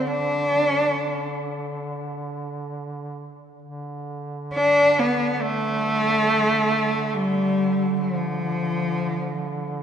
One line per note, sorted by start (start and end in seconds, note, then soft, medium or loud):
0.00 3.45 D3 soft
0.07 1.35 D4 medium
3.62 9.83 D3 soft
4.53 5.01 D4 loud
4.99 5.33 B3 medium
5.33 5.43 B3 medium
5.42 7.16 A3 loud
7.15 8.02 G3 medium
8.00 9.70 F3 medium